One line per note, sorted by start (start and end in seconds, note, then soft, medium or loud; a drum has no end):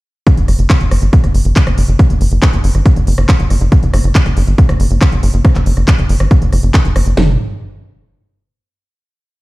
0.27 kick loud
0.27 closed hi-hat medium
0.37 0.44 F#1 medium
0.37 closed hi-hat medium
0.48 0.55 F#1 loud
0.48 cross-stick soft
0.48 open hi-hat loud
0.59 0.66 F#1 medium
0.59 closed hi-hat medium
0.70 kick loud
0.70 clap loud
0.70 closed hi-hat medium
0.81 0.87 F#1 medium
0.81 closed hi-hat medium
0.91 0.98 F#1 loud
0.91 cross-stick medium
0.91 open hi-hat loud
1.02 1.09 G1 medium
1.02 closed hi-hat medium
1.13 kick loud
1.13 closed hi-hat medium
1.24 1.31 F#1 medium
1.24 cross-stick soft
1.24 closed hi-hat medium
1.35 1.41 F#1 loud
1.35 open hi-hat loud
1.45 1.52 F#1 medium
1.45 closed hi-hat medium
1.56 kick loud
1.56 clap loud
1.56 closed hi-hat medium
1.67 1.74 F#1 medium
1.67 cross-stick medium
1.67 closed hi-hat medium
1.78 1.85 F#1 loud
1.78 open hi-hat loud
1.88 1.95 F#1 medium
1.88 closed hi-hat medium
1.99 kick loud
1.99 cross-stick soft
1.99 closed hi-hat medium
2.10 2.17 F#1 medium
2.10 closed hi-hat medium
2.21 2.28 F#1 loud
2.21 open hi-hat loud
2.32 2.39 F#1 medium
2.32 closed hi-hat medium
2.42 kick loud
2.42 cross-stick medium
2.42 clap loud
2.42 closed hi-hat medium
2.53 2.60 F#1 medium
2.53 closed hi-hat medium
2.64 2.71 F#1 loud
2.64 open hi-hat loud
2.75 2.82 G1 medium
2.75 cross-stick soft
2.75 closed hi-hat medium
2.86 kick loud
2.86 closed hi-hat medium
2.96 3.03 F#1 medium
2.96 closed hi-hat medium
3.07 3.14 F#1 loud
3.07 open hi-hat loud
3.18 3.25 F#1 medium
3.18 cross-stick medium
3.18 closed hi-hat medium
3.29 kick loud
3.29 clap loud
3.29 closed hi-hat medium
3.40 3.46 F#1 medium
3.40 closed hi-hat medium
3.50 3.57 F#1 loud
3.50 cross-stick soft
3.50 open hi-hat loud
3.61 3.68 F#1 medium
3.61 closed hi-hat medium
3.72 kick loud
3.72 closed hi-hat medium
3.83 3.90 F#1 medium
3.83 closed hi-hat medium
3.94 4.00 F#1 loud
3.94 cross-stick medium
3.94 open hi-hat loud
4.04 4.11 F#1 medium
4.04 closed hi-hat soft
4.15 kick loud
4.15 clap loud
4.15 closed hi-hat medium
4.26 4.33 F#1 medium
4.26 cross-stick soft
4.26 closed hi-hat medium
4.37 4.44 F#1 loud
4.37 open hi-hat loud
4.47 4.54 G1 medium
4.47 closed hi-hat medium
4.58 kick loud
4.58 closed hi-hat medium
4.69 4.76 F#1 medium
4.69 cross-stick medium
4.69 closed hi-hat medium
4.80 4.87 F#1 loud
4.80 open hi-hat loud
4.91 4.98 F#1 medium
4.91 closed hi-hat medium
5.01 kick loud
5.01 cross-stick soft
5.01 clap loud
5.01 closed hi-hat medium
5.12 5.19 F#1 medium
5.12 closed hi-hat medium
5.23 5.30 F#1 loud
5.23 open hi-hat loud
5.34 5.41 F#1 medium
5.34 closed hi-hat medium
5.45 kick loud
5.45 cross-stick medium
5.45 closed hi-hat medium
5.55 5.62 F#1 medium
5.55 clap soft
5.55 closed hi-hat soft
5.66 5.73 F#1 loud
5.66 open hi-hat loud
5.77 5.84 F#1 medium
5.77 cross-stick soft
5.77 closed hi-hat soft
5.88 kick loud
5.88 clap loud
5.88 closed hi-hat medium
5.99 6.05 F#1 medium
5.99 closed hi-hat medium
6.09 6.16 F#1 loud
6.09 open hi-hat loud
6.20 6.27 G1 medium
6.20 cross-stick medium
6.20 closed hi-hat soft
6.31 kick loud
6.31 closed hi-hat medium
6.42 6.49 F#1 medium
6.42 closed hi-hat medium
6.53 6.59 F#1 loud
6.53 cross-stick soft
6.53 open hi-hat loud
6.63 6.70 F#1 medium
6.63 closed hi-hat medium
6.74 kick loud
6.74 clap loud
6.74 closed hi-hat medium
6.85 6.92 F#1 medium
6.85 closed hi-hat medium
6.96 7.03 F#1 loud
6.96 cross-stick medium
6.96 open hi-hat loud
7.07 7.13 F#1 medium
7.07 closed hi-hat soft
7.17 7.37 F#1 medium
7.17 snare loud
7.17 floor tom loud